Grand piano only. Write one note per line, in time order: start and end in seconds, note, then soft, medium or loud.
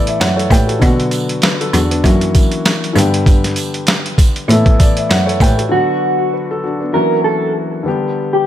0.00 0.79 E3 medium
0.00 0.79 A3 medium
0.00 0.80 B3 medium
0.00 0.81 E4 medium
0.00 0.37 A4 medium
0.00 0.84 D5 medium
0.08 0.19 E5 medium
0.21 0.35 C#5 medium
0.21 0.37 E5 medium
0.21 0.49 F#5 medium
0.36 0.50 A4 medium
0.36 0.50 C#5 medium
0.52 0.68 G4 medium
0.52 0.68 B4 medium
0.52 0.80 G5 medium
0.67 0.83 F#4 medium
0.67 0.97 A4 medium
0.79 2.01 D3 medium
0.79 2.01 F#3 medium
0.79 1.42 B3 medium
0.79 1.42 D4 medium
0.84 1.43 F#4 medium
1.44 1.60 B4 medium
1.61 1.72 F#4 medium
1.61 1.73 A4 medium
1.74 1.89 D4 medium
1.74 1.90 F#4 medium
1.91 2.20 B3 medium
1.91 2.20 D4 medium
2.03 2.96 E3 medium
2.03 2.96 F#3 medium
2.03 2.96 A#3 medium
2.03 2.97 C#4 medium
2.03 2.97 F#4 medium
2.93 4.45 D3 medium
2.93 4.45 G3 medium
2.93 4.46 B3 medium
2.93 4.46 D4 medium
2.98 4.47 G4 medium
4.48 5.68 E3 medium
4.48 5.69 A3 medium
4.48 5.70 B3 medium
4.48 5.70 E4 medium
4.52 4.81 A4 medium
4.79 4.95 D5 medium
4.98 5.09 E5 medium
5.11 5.25 C#5 medium
5.11 5.27 E5 medium
5.11 5.39 F#5 medium
5.26 5.40 A4 medium
5.26 5.40 C#5 medium
5.42 5.58 G4 medium
5.42 5.58 B4 medium
5.42 5.70 G5 medium
5.57 5.72 F#4 medium
5.57 5.87 A4 medium
5.69 6.90 D3 medium
5.69 6.91 F#3 medium
5.69 6.32 B3 medium
5.69 6.32 D4 medium
5.74 6.33 F#4 medium
6.34 6.49 B4 medium
6.51 6.62 F#4 medium
6.51 6.63 A4 medium
6.64 6.79 D4 medium
6.64 6.80 F#4 medium
6.80 7.10 B3 medium
6.80 7.09 D4 medium
6.93 7.85 E3 medium
6.93 7.86 F#3 medium
6.93 7.86 A#3 medium
6.93 7.86 C#4 medium
6.93 7.87 F#4 medium
7.83 8.47 D3 medium
7.83 8.47 G3 medium
7.83 8.47 B3 medium
7.83 8.47 D4 medium
7.88 8.47 G4 medium